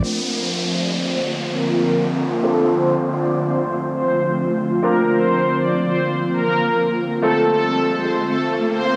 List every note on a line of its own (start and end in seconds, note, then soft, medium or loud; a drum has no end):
0.03 7.19 D3 medium
0.03 2.41 F3 medium
0.03 2.41 A#3 medium
0.03 2.39 C4 medium
0.03 8.96 C4 medium
0.03 2.39 D4 medium
0.03 2.39 F4 medium
0.03 8.96 F4 medium
0.03 0.25 A#4 medium
0.03 2.39 A#4 medium
0.03 downlifter medium
0.33 0.55 C5 medium
0.79 0.89 D5 medium
1.09 1.19 C5 medium
1.53 1.96 A#4 medium
2.43 7.19 F3 medium
2.43 4.81 A3 medium
2.43 4.79 C4 medium
2.43 4.79 D4 medium
2.43 4.79 F4 medium
2.43 2.65 A4 medium
2.43 4.79 A4 medium
2.73 2.95 C5 medium
3.19 3.29 D5 medium
3.49 3.59 C5 medium
3.93 4.15 C5 medium
4.83 7.21 A#3 medium
4.83 7.19 C4 medium
4.83 7.19 D4 medium
4.83 7.19 F4 medium
4.83 5.05 A#4 medium
4.83 7.19 A#4 medium
4.83 riser medium
5.13 5.35 C5 medium
5.59 5.69 D5 medium
5.89 5.99 C5 medium
6.33 6.76 A#4 medium
7.22 8.96 A3 medium
7.22 8.96 C4 medium
7.22 8.96 F4 medium
7.22 7.45 A4 medium
7.22 8.96 A4 medium
7.53 7.75 A4 medium
7.99 8.09 C5 medium
8.29 8.39 A4 medium
8.73 8.95 C5 medium